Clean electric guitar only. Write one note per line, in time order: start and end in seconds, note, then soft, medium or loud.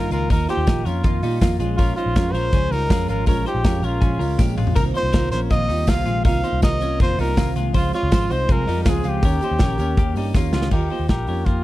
0.00 0.12 A#3 medium
0.00 0.11 F4 medium
0.12 0.30 G#3 medium
0.12 0.30 F4 medium
0.31 0.49 D#4 medium
0.31 0.49 A#4 loud
0.49 0.67 D#4 medium
0.49 0.67 C5 medium
0.67 0.86 D#4 medium
0.67 0.84 A#4 medium
0.85 1.04 C#4 medium
0.85 1.04 A#4 medium
1.04 1.23 A#3 medium
1.04 1.23 F4 medium
1.23 1.42 G3 medium
1.23 1.41 D#4 medium
1.41 1.60 A#3 medium
1.41 1.58 F4 medium
1.60 1.79 G#3 medium
1.60 1.78 F4 medium
1.79 1.97 C#4 medium
1.79 1.97 A#4 loud
1.98 2.16 D#4 medium
1.98 2.16 C5 medium
2.16 2.34 C#4 medium
2.16 2.34 A#4 medium
2.35 2.53 C#4 medium
2.35 2.53 A#4 medium
2.54 2.72 C#4 medium
2.54 2.72 G#4 medium
2.73 2.91 G3 soft
2.73 2.91 D#4 medium
2.92 3.09 G#3 medium
2.92 3.08 F4 medium
3.09 3.28 G#3 medium
3.09 3.28 F4 medium
3.27 3.46 C#4 medium
3.27 3.46 A#4 loud
3.46 3.65 D#4 medium
3.46 3.64 C5 medium
3.65 3.83 C#4 medium
3.65 3.82 A#4 medium
3.83 4.00 C#4 medium
3.83 4.02 A#4 medium
4.01 4.19 C#4 medium
4.01 4.20 G#4 medium
4.19 4.39 C#4 medium
4.19 4.39 A#4 medium
4.39 4.57 A#3 medium
4.39 4.57 G4 medium
4.57 4.76 G#3 medium
4.57 4.76 F4 medium
4.76 4.94 D#4 medium
4.76 4.94 A#4 medium
4.94 5.12 D#4 medium
4.94 5.12 C5 medium
5.13 5.32 D#4 medium
5.13 5.31 A#4 medium
5.32 5.51 C#4 medium
5.32 5.51 A#4 medium
5.50 5.70 A#3 medium
5.50 5.68 F4 medium
5.68 5.88 G3 medium
5.68 5.87 D#4 medium
5.87 6.07 A#3 medium
5.87 6.05 F4 medium
6.06 6.25 G#3 medium
6.06 6.25 F4 medium
6.25 6.43 D#4 medium
6.25 6.43 A#4 medium
6.44 6.63 D#4 medium
6.44 6.62 C5 medium
6.63 6.82 D#4 medium
6.63 6.81 A#4 medium
6.82 7.00 C#4 medium
6.82 7.00 A#4 medium
7.01 7.19 A#3 medium
7.01 7.18 F4 medium
7.19 7.38 G3 medium
7.19 7.37 D#4 medium
7.37 7.56 A#3 medium
7.37 7.55 F4 medium
7.56 7.75 G#3 medium
7.56 7.74 F4 medium
7.74 7.93 F4 medium
7.74 7.93 C5 loud
7.94 8.12 F4 medium
7.94 8.12 C#5 medium
8.12 8.31 F4 medium
8.12 8.29 C5 medium
8.30 8.49 D#4 medium
8.30 8.49 C5 medium
8.50 8.68 C4 medium
8.50 8.67 G#4 medium
8.67 8.86 G3 medium
8.67 8.86 D#4 medium
8.86 9.05 G#3 medium
8.86 9.04 F4 medium
9.05 9.24 G#3 medium
9.05 9.23 F4 medium
9.25 9.43 C#4 medium
9.25 9.42 A#4 medium
9.44 9.61 D#4 medium
9.44 9.61 C5 medium
9.62 9.80 C#4 medium
9.62 9.78 A#4 medium
9.80 9.98 C#4 medium
9.80 9.98 A#4 medium
9.98 10.17 A#3 medium
9.98 10.16 G4 medium
10.17 10.36 G3 medium
10.17 10.35 D#4 medium
10.35 10.54 A#3 medium
10.35 10.53 F4 medium
10.54 10.73 G#3 medium
10.54 10.72 F4 medium
10.73 10.91 D#4 medium
10.73 10.91 A#4 medium
10.92 11.10 D#4 medium
10.92 11.10 C5 medium
11.10 11.29 D#4 medium
11.10 11.27 A#4 medium
11.28 11.47 C#4 medium
11.28 11.47 A#4 medium
11.47 11.64 A#3 medium
11.47 11.64 G4 medium